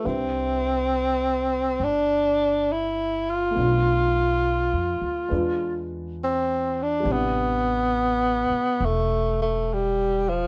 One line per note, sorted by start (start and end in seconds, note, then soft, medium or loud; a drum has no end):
0.04 1.77 C2 medium
0.04 3.55 G3 soft
0.04 1.85 C4 medium
0.04 3.56 D4 soft
0.04 3.56 B4 soft
0.04 3.56 E5 soft
1.80 3.52 G1 medium
1.84 2.74 D4 medium
2.72 3.31 E4 medium
3.30 5.90 F4 medium
3.51 5.28 A3 soft
3.51 5.30 B3 soft
3.57 4.69 B1 medium
3.57 5.30 D4 soft
3.62 5.32 F4 soft
4.73 5.00 F2 soft
5.02 5.29 D2 soft
5.29 7.02 E2 medium
5.29 7.04 G#3 soft
5.29 7.06 D4 soft
5.29 7.05 B4 soft
5.33 7.07 F4 soft
6.24 6.84 C4 medium
6.83 7.13 D4 medium
7.00 10.47 G3 soft
7.00 10.47 B3 soft
7.05 8.45 A1 medium
7.05 10.47 C3 soft
7.11 8.87 B3 medium
7.11 10.47 D4 soft
8.50 muted upright bass stroke soft
8.80 10.47 E1 medium
8.85 9.39 A3 medium
9.42 9.75 A3 medium
9.73 10.30 G3 medium
10.29 10.47 F3 medium